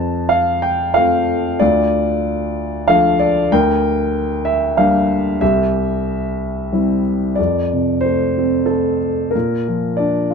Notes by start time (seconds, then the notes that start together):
Already playing: F2 C5 A5
0.29 F5
0.62 G5
0.94 A3 C4 F4 F5
1.60 D2 F4 D5
2.88 F3 A3 D4 F5
3.20 D5
3.52 D2 A#4 G5
4.45 E5
4.77 G3 A#3 D4 F5
5.41 C2 G4 E5
6.72 G3 C4 E4
7.35 F2 D5
7.73 C3
8.01 C5
8.05 A3
8.38 C4
8.66 A4
8.71 A3
9.31 A#4
9.35 A#2
9.68 F3
9.97 D4 D5
10.30 F4